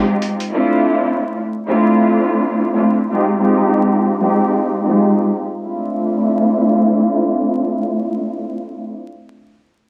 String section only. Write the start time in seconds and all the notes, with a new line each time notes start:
Already playing: G#3 C4 D#4 F4 G4
0.54 A3 C4 D4 E4 F4
1.67 A3 C4 D4 E4 F4
2.76 A3 C4 D4 E4 F4
3.10 G#3 C4 D#4 F4 G4
3.38 G#3 C4 D#4 F4 G4
4.21 G#3 C4 D#4 F4 G4
4.85 G#3 C4 D#4 F4 G4
5.63 A3 C4 D4 E4 F4